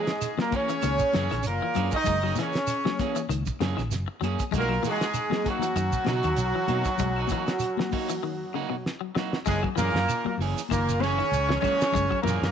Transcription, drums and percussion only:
0.07 snare medium
0.07 closed hi-hat medium
0.07 shekere soft
0.21 closed hi-hat medium
0.21 claves medium
0.21 shekere medium
0.38 snare medium
0.38 high conga medium
0.51 kick medium
0.51 closed hi-hat medium
0.51 high conga medium
0.51 shekere soft
0.69 closed hi-hat medium
0.69 shekere medium
0.82 snare soft
0.82 closed hi-hat medium
0.82 high conga medium
0.82 claves medium
0.82 shekere medium
0.99 kick medium
0.99 shekere medium
1.13 snare medium
1.13 closed hi-hat soft
1.13 high conga loud
1.30 snare soft
1.30 closed hi-hat medium
1.30 claves medium
1.30 shekere soft
1.43 closed hi-hat medium
1.43 shekere medium
1.74 closed hi-hat medium
1.74 low conga medium
1.74 claves medium
1.74 shekere soft
1.91 kick medium
1.91 shekere medium
2.04 kick medium
2.04 closed hi-hat medium
2.04 low conga medium
2.04 shekere medium
2.23 claves medium
2.36 snare soft
2.36 closed hi-hat medium
2.36 high conga loud
2.36 shekere medium
2.53 snare medium
2.53 closed hi-hat medium
2.53 shekere soft
2.67 closed hi-hat medium
2.67 claves medium
2.67 shekere loud
2.85 snare medium
2.85 high conga medium
2.99 kick medium
2.99 snare soft
2.99 closed hi-hat medium
2.99 high conga medium
2.99 shekere soft
3.16 shekere medium
3.29 closed hi-hat medium
3.29 high conga medium
3.29 claves medium
3.29 shekere medium
3.46 kick medium
3.46 shekere medium
3.61 snare medium
3.61 closed hi-hat medium
3.61 high conga loud
3.78 snare soft
3.78 claves medium
3.78 shekere soft
3.91 snare soft
3.91 closed hi-hat medium
3.91 shekere medium
4.22 closed hi-hat medium
4.22 high conga medium
4.22 low conga medium
4.22 claves medium
4.22 shekere soft
4.39 kick medium
4.39 closed hi-hat medium
4.39 shekere medium
4.51 kick loud
4.51 closed hi-hat medium
4.51 low conga medium
4.51 shekere medium
4.69 claves medium
4.83 closed hi-hat medium
4.83 high conga medium
4.83 shekere medium
5.01 snare medium
5.01 closed hi-hat medium
5.01 shekere soft
5.14 closed hi-hat medium
5.14 claves medium
5.14 shekere medium
5.30 snare medium
5.30 high conga medium
5.44 kick medium
5.44 closed hi-hat medium
5.44 high conga medium
5.44 shekere soft
5.59 closed hi-hat medium
5.59 high conga medium
5.59 low conga medium
5.59 shekere medium
5.76 closed hi-hat medium
5.76 claves medium
5.76 shekere medium
5.93 kick medium
5.93 shekere medium
6.05 snare medium
6.05 closed hi-hat soft
6.05 high conga loud
6.23 closed hi-hat medium
6.23 claves medium
6.23 shekere soft
6.37 closed hi-hat medium
6.37 shekere medium
6.68 closed hi-hat medium
6.68 high conga medium
6.68 low conga medium
6.68 claves medium
6.68 shekere soft
6.85 kick medium
6.85 snare soft
6.85 shekere medium
6.98 kick medium
6.98 closed hi-hat medium
6.98 low conga medium
6.98 shekere medium
7.16 claves medium
7.27 kick medium
7.27 closed hi-hat medium
7.27 high conga medium
7.27 shekere medium
7.47 snare medium
7.47 closed hi-hat soft
7.47 shekere soft
7.59 closed hi-hat medium
7.59 claves medium
7.59 shekere medium
7.77 snare medium
7.77 high conga medium
7.91 kick medium
7.91 open hi-hat medium
7.91 high conga medium
7.91 shekere soft
8.09 shekere medium
8.86 snare medium
9.16 snare medium
9.33 snare medium
9.46 kick loud
9.46 ride bell medium
9.46 low conga medium
9.46 shekere medium
9.63 kick medium
9.63 claves medium
9.78 ride bell medium
9.78 high conga loud
9.78 shekere medium
9.95 snare medium
9.95 shekere soft
10.08 ride bell medium
10.08 claves medium
10.08 shekere loud
10.25 high conga medium
10.38 open hi-hat medium
10.38 high conga medium
10.38 shekere soft
10.58 shekere medium
10.69 kick medium
10.69 ride bell medium
10.69 high conga medium
10.69 claves medium
10.69 shekere medium
10.89 shekere loud
11.00 snare soft
11.00 ride bell soft
11.00 high conga loud
11.18 claves medium
11.18 shekere soft
11.33 ride bell medium
11.33 shekere medium
11.50 snare medium
11.62 kick medium
11.62 ride bell medium
11.62 low conga medium
11.62 claves medium
11.62 shekere soft
11.81 snare medium
11.81 ride bell medium
11.81 shekere medium
11.92 kick loud
11.92 ride bell medium
11.92 low conga loud
11.92 shekere medium
12.12 kick medium
12.12 claves medium
12.23 snare soft
12.23 ride bell medium
12.23 high conga loud
12.28 shekere medium
12.43 snare medium
12.43 ride bell medium
12.43 shekere soft

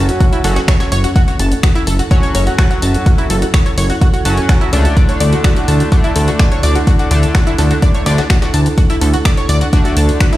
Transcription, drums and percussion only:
0.09 closed hi-hat soft
0.20 kick loud
0.20 closed hi-hat medium
0.33 closed hi-hat soft
0.44 snare loud
0.44 closed hi-hat medium
0.44 open hi-hat loud
0.56 snare loud
0.56 closed hi-hat medium
0.56 closed hi-hat soft
0.68 finger snap loud
0.68 kick loud
0.68 snare loud
0.68 closed hi-hat medium
0.80 snare loud
0.80 closed hi-hat medium
0.80 closed hi-hat soft
0.92 closed hi-hat medium
0.92 open hi-hat loud
1.04 closed hi-hat soft
1.16 kick loud
1.16 closed hi-hat medium
1.28 snare soft
1.28 closed hi-hat soft
1.39 closed hi-hat medium
1.39 open hi-hat loud
1.52 closed hi-hat soft
1.63 finger snap loud
1.63 kick loud
1.63 snare loud
1.63 closed hi-hat medium
1.75 closed hi-hat soft
1.87 closed hi-hat medium
1.87 open hi-hat loud
1.99 closed hi-hat soft
2.11 kick loud
2.11 closed hi-hat medium
2.23 closed hi-hat soft
2.35 closed hi-hat medium
2.35 open hi-hat loud
2.47 closed hi-hat soft
2.59 finger snap loud
2.59 kick loud
2.59 snare loud
2.59 closed hi-hat medium
2.71 snare medium
2.71 closed hi-hat soft
2.82 closed hi-hat medium
2.82 open hi-hat loud
2.94 closed hi-hat soft
3.06 kick loud
3.06 closed hi-hat medium
3.18 closed hi-hat soft
3.30 snare medium
3.30 closed hi-hat medium
3.30 open hi-hat loud
3.42 closed hi-hat soft
3.54 finger snap loud
3.54 kick loud
3.54 snare loud
3.54 closed hi-hat medium
3.66 closed hi-hat soft
3.78 open hi-hat loud
3.78 open hi-hat medium
3.90 closed hi-hat soft
4.01 kick loud
4.01 closed hi-hat medium
4.14 closed hi-hat soft
4.25 closed hi-hat medium
4.25 open hi-hat loud
4.37 closed hi-hat soft
4.49 finger snap loud
4.49 kick loud
4.49 snare loud
4.49 closed hi-hat medium
4.61 closed hi-hat soft
4.73 closed hi-hat medium
4.73 open hi-hat loud
4.85 closed hi-hat soft
4.97 kick loud
4.97 closed hi-hat medium
5.09 snare soft
5.09 closed hi-hat soft
5.20 closed hi-hat medium
5.20 open hi-hat loud
5.33 closed hi-hat soft
5.44 finger snap loud
5.44 kick loud
5.44 snare loud
5.44 closed hi-hat medium
5.56 closed hi-hat soft
5.68 closed hi-hat medium
5.68 open hi-hat loud
5.80 closed hi-hat soft
5.92 kick loud
5.92 closed hi-hat medium
6.04 closed hi-hat soft
6.16 closed hi-hat medium
6.16 open hi-hat loud
6.28 closed hi-hat soft
6.39 finger snap loud
6.39 kick loud
6.39 snare loud
6.39 closed hi-hat medium
6.52 snare medium
6.52 closed hi-hat soft
6.63 closed hi-hat medium
6.63 open hi-hat loud
6.75 closed hi-hat soft
6.87 kick loud
6.87 closed hi-hat medium
6.99 closed hi-hat soft
7.11 snare medium
7.11 closed hi-hat medium
7.11 open hi-hat loud
7.23 closed hi-hat soft
7.35 finger snap loud
7.35 kick loud
7.35 snare loud
7.35 closed hi-hat medium
7.47 closed hi-hat soft
7.58 snare loud
7.58 closed hi-hat medium
7.58 open hi-hat loud
7.71 closed hi-hat soft
7.82 kick loud
7.82 closed hi-hat medium
7.94 closed hi-hat soft
8.06 snare loud
8.06 closed hi-hat medium
8.06 open hi-hat loud
8.18 snare loud
8.18 closed hi-hat soft
8.18 closed hi-hat medium
8.30 finger snap loud
8.30 kick loud
8.30 snare loud
8.30 closed hi-hat medium
8.42 snare loud
8.42 closed hi-hat soft
8.42 closed hi-hat medium
8.54 closed hi-hat medium
8.54 open hi-hat loud
8.66 closed hi-hat soft
8.78 kick loud
8.78 closed hi-hat medium
8.90 snare soft
8.90 closed hi-hat soft
9.01 closed hi-hat medium
9.01 open hi-hat loud
9.14 closed hi-hat soft
9.25 finger snap loud
9.25 kick loud
9.25 snare loud
9.25 closed hi-hat medium
9.37 closed hi-hat soft
9.49 closed hi-hat medium
9.49 open hi-hat loud
9.61 closed hi-hat soft
9.73 kick loud
9.73 closed hi-hat medium
9.85 closed hi-hat soft
9.97 closed hi-hat medium
9.97 open hi-hat loud
10.09 closed hi-hat soft
10.20 finger snap loud
10.20 kick loud
10.20 snare loud
10.20 closed hi-hat medium
10.33 snare medium
10.33 closed hi-hat soft

